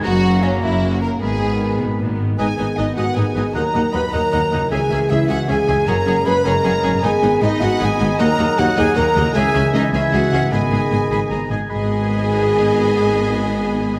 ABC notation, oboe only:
X:1
M:6/8
L:1/16
Q:3/8=103
K:G#m
V:1 name="Oboe"
a8- a2 z2 | b8- b z3 | d2 d2 d2 d2 d2 d2 | f2 f2 f2 f2 f2 f2 |
g2 g2 g2 g2 g2 g2 | g2 g2 g2 g2 g2 g2 | b12 | f12 |
g6 g6 | b6 b2 a2 g2 | b12- | b12 |]